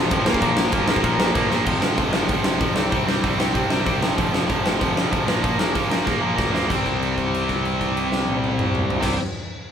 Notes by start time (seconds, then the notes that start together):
Already playing: F2 C3 F3
0.10 A1 F2 C3 F3, kick, crash
0.25 A#1 A#2 F3 A#3, snare
0.34 kick
0.42 A#1 A#2 F3 A#3, kick, crash
0.57 A#1, snare
0.72 G1 A#2 F3 A#3, kick, crash
0.86 A#1 A#2 F3, snare
0.90 A#3
0.96 kick
1.03 A#1 A#2 F3 A#3, kick, crash
1.18 A#1, snare
1.34 A#1 A#2 F3 A#3, kick, crash
1.49 A#1 A#2 F3 A#3, snare
1.65 F1 F2 C3 F3, kick, crash
1.81 F1 F2 C3 F3, snare
1.97 F1 F2 C3 F3, kick, open hi-hat
2.12 F1 F2 C3 F3, snare
2.28 F1 F2 C3 F3, kick, open hi-hat
2.44 F1 F2 C3 F3, snare
2.61 F1 F2 C3 F3, kick, open hi-hat
2.74 C2 C3 G3 C4, snare
2.90 C2 C3 G3 C4, kick, open hi-hat
3.07 C2 C3 G3 C4, snare
3.21 C2 C3 G3 C4, kick, open hi-hat
3.38 C3 G3 C4, snare
3.53 C2 C3 G3 C4, kick, open hi-hat
3.70 C2 C3 G3 C4, snare
3.85 C2 C3 G3 C4, kick, open hi-hat
4.00 F1 F2 C3 F3, snare
4.16 F1 F2 C3 F3, kick, open hi-hat
4.31 F1 F2 C3 F3, snare
4.48 F1 F2 C3 F3, kick, open hi-hat
4.63 F1 F2 C3 F3, snare
4.79 F1 F2 C3 F3, kick, open hi-hat
4.95 F1 F2 C3 F3, snare
5.11 F1 F2 C3 F3, kick, open hi-hat
5.26 A#1 A#2 F3 A#3, snare
5.42 A#1 A#2 F3 A#3, kick, open hi-hat
5.58 A#1 A#2 F3 A#3, snare
5.74 A#1 A#2 F3 A#3, kick, open hi-hat
5.89 A#2 F3 A#3, snare
6.05 A#1 A#2 F3 A#3, kick, snare
6.21 A#1 A#2 F3 A#3
6.36 D2 A#2 F3 A#3, kick, snare
6.53 A#2 F3 A#3, snare
6.68 C2 C3 G3 C4, kick, crash
6.86 kick, crash
7.03 crash
7.18 kick, crash
7.34 crash
7.49 kick, crash
7.65 crash
7.81 kick, crash
7.97 crash
8.12 snare
8.28 high tom
8.44 high tom
8.59 mid tom
8.75 mid tom
8.90 floor tom
9.01 C2 C3 G3, kick, snare, crash
9.05 C4